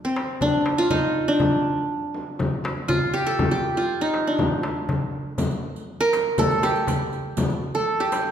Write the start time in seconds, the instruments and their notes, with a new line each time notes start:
0.04 qanun C4, darbuka ka
0.16 darbuka tek, frame drum
0.41 qanun D4, darbuka dum, frame drum
0.66 darbuka tek, frame drum
0.78 qanun F4, darbuka ka
0.90 qanun D#4, darbuka dum, frame drum
1.15 darbuka ka
1.28 qanun D4
1.40 darbuka dum, frame drum
1.65 darbuka ka
2.03 darbuka ka
2.14 frame drum
2.39 frame drum, darbuka dum
2.64 darbuka tek, frame drum
2.77 darbuka ka
2.88 qanun F4, darbuka dum, frame drum
3.14 qanun G4, darbuka ka
3.26 qanun A4
3.39 frame drum, darbuka dum
3.51 qanun G4
3.64 darbuka ka
3.76 qanun F4, darbuka ka
3.89 darbuka ka
4.01 qanun D#4
4.14 darbuka tek, frame drum
4.27 qanun D4
4.39 darbuka dum, frame drum
4.51 darbuka ka
4.63 darbuka tek, frame drum
4.76 darbuka ka
4.89 darbuka dum, frame drum
5.01 darbuka ka
5.38 riq, darbuka dum, frame drum
5.51 riq
5.63 darbuka ka
5.76 riq
6.01 qanun A#4, darbuka ka
6.13 riq, darbuka tek, frame drum
6.38 qanun A4, riq, darbuka dum, frame drum
6.51 riq
6.63 qanun G4, riq, darbuka tek, frame drum
6.75 riq, darbuka ka
6.87 riq, darbuka dum, frame drum
7.13 riq, darbuka ka
7.37 riq, darbuka dum, frame drum
7.50 riq
7.63 darbuka ka
7.74 qanun A4, riq
8.00 qanun G4, darbuka ka
8.12 riq, darbuka tek, frame drum